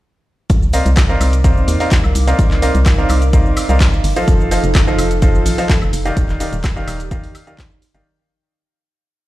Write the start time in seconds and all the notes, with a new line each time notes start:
0.50 C2 D#4, kick, closed hi-hat, shaker
0.63 shaker
0.69 D#5 D6, closed hi-hat, open hi-hat
0.73 C4 A#4 D5 F5, shaker
0.78 A#4
0.86 C2 F5, closed hi-hat, shaker
0.96 kick, snare, clap, closed hi-hat, high woodblock, shaker
1.09 C4 A#4 D5 D#5 F5, shaker
1.21 C2, closed hi-hat, open hi-hat, high woodblock, shaker
1.33 closed hi-hat, shaker
1.44 C4 A#4 D5 D#5 F5, kick, closed hi-hat, shaker
1.57 shaker
1.68 D#2, closed hi-hat, open hi-hat, shaker
1.80 C4 A#4 D5 D#5 F5, open hi-hat, shaker
1.91 kick, snare, clap, closed hi-hat, shaker
2.04 C2, high woodblock, shaker
2.15 C2, closed hi-hat, open hi-hat, shaker
2.27 C4 A#4 D5 D#5 F5, snare, closed hi-hat, shaker
2.39 C2, kick, closed hi-hat, shaker
2.51 clap, shaker
2.62 C4 A#4 D5 D#5 F5, closed hi-hat, open hi-hat, shaker
2.75 C2, closed hi-hat, shaker
2.86 kick, snare, clap, closed hi-hat, high woodblock, shaker
2.98 C4 A#4 D5 D#5 F5, shaker
3.09 C2, closed hi-hat, open hi-hat, high woodblock, shaker
3.22 closed hi-hat, shaker
3.33 C4 A#4 D5 D#5 F5, kick, closed hi-hat, shaker
3.46 shaker
3.56 closed hi-hat, open hi-hat, high woodblock, shaker
3.69 C2 C4 A#4 D5 D#5 F5, closed hi-hat, shaker
3.80 kick, snare, clap, closed hi-hat, shaker
3.93 shaker
4.04 G1, snare, open hi-hat, shaker
4.16 F3 A4 C5 D#5 F5, closed hi-hat, shaker
4.28 F1, kick, closed hi-hat, shaker
4.40 shaker
4.51 F3 A4 C5 D#5 F5, closed hi-hat, open hi-hat, shaker
4.59 A4
4.64 F1, closed hi-hat, shaker
4.74 kick, snare, clap, closed hi-hat, high woodblock, shaker
4.87 F3 A4 C5 D#5 F5, shaker
4.98 F1, closed hi-hat, open hi-hat, high woodblock, shaker
5.11 closed hi-hat, shaker
5.22 F3 A4 C5 D#5 F5, kick, closed hi-hat, shaker
5.35 shaker
5.46 A1, closed hi-hat, open hi-hat, shaker
5.58 F3 A4 C5 D#5 F5, open hi-hat, shaker
5.69 kick, snare, clap, closed hi-hat, shaker
5.82 F1, high woodblock, shaker
5.93 F1, closed hi-hat, open hi-hat, shaker
6.05 D#3 G4 D5 D#5 F5, snare, closed hi-hat, shaker
6.17 D#1 D#4, kick, closed hi-hat, shaker
6.29 clap, shaker
6.40 D#3 G4 D5 D#5 F5, closed hi-hat, open hi-hat, shaker
6.53 D#1, closed hi-hat, shaker
6.64 kick, snare, clap, closed hi-hat, high woodblock, shaker
6.76 D#3 G4 D5 D#5 F5, shaker
6.88 D#1, closed hi-hat, open hi-hat, high woodblock, shaker
7.00 closed hi-hat, shaker
7.11 D#3 G4 D5 D#5 F5, kick, closed hi-hat, shaker
7.23 D#2, open hi-hat, shaker
7.35 closed hi-hat, open hi-hat, high woodblock, shaker
7.47 D#3 G4 D5 D#5 F5, closed hi-hat, shaker
7.58 kick, snare, clap, closed hi-hat, shaker
7.71 shaker
7.82 snare, open hi-hat, shaker
7.94 G1 D#3 G4 D5 D#5 F5, closed hi-hat, shaker